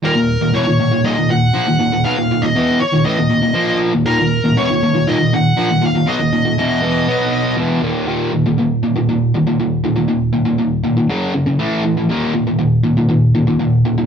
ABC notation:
X:1
M:4/4
L:1/16
Q:1/4=120
K:Ebm
V:1 name="Lead electric guitar"
B4 d4 e2 g6 | f3 e3 d2 e6 z2 | B4 d4 e2 g4 f2 | e12 z4 |
z16 | z16 | z16 |]
V:2 name="Distorted electric guitar" clef=bass
[E,,B,,] [E,,B,,]2 [E,,B,,] [_F,,C,] [E,,B,,] [E,,B,,] [E,,B,,] [E,,B,,] [E,,B,,] [E,,B,,]2 [B,,=F,] [E,,B,,] [E,,B,,] [E,,B,,] | [C,G,] [E,,B,,] [E,,B,,] [E,,B,,] [_F,,C,_F,]2 z [E,,B,,] [=A,,F,] [E,,B,,] [E,,B,,] [E,,B,,] [B,,=F,B,]3 [E,,B,,] | [E,,B,,] [E,,B,,]2 [E,,B,,] [_F,,C,] [E,,B,,] [E,,B,,] [E,,B,,] [E,,B,,] [E,,B,,] [E,,B,,]2 [B,,=F,] [E,,B,,] [E,,B,,] [E,,B,,] | [C,G,] [E,,B,,] [E,,B,,] [E,,B,,] [_F,,C,_F,]2 [F,,C,F,]2 [=B,,^F,=B,]4 [_F,,C,_F,]2 [E,,_B,,E,]2 |
[E,,B,,E,]2 [E,,B,,] [E,,B,,] [E,,B,,]2 [E,,B,,] [E,,B,,] [E,,B,,]2 [E,,B,,] [E,,B,,] [E,,B,,]2 [E,,B,,] [E,,B,,] | [E,,B,,]2 [E,,B,,] [E,,B,,] [E,,B,,]2 [E,,B,,] [E,,B,,] [G,,D,G,]2 [G,,D,] [G,,D,] [=A,,=E,=A,]2 [A,,E,] [A,,E,] | [E,,B,,E,]2 [E,,B,,] [E,,B,,] [E,,B,,]2 [E,,B,,] [E,,B,,] [E,,B,,]2 [E,,B,,] [E,,B,,] [E,,B,,]2 [E,,B,,] [E,,B,,] |]